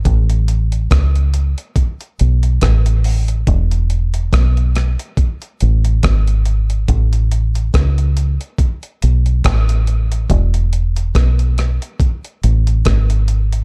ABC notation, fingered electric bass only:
X:1
M:4/4
L:1/16
Q:"Swing 16ths" 1/4=70
K:E
V:1 name="Fingered electric bass" clef=bass
A,,,4 C,,3 z3 B,,,2 A,,,4 | E,,,4 B,,,3 z3 A,,,2 G,,,4 | A,,,4 C,,3 z3 B,,,2 A,,,4 | E,,,4 B,,,3 z3 A,,,2 G,,,4 |]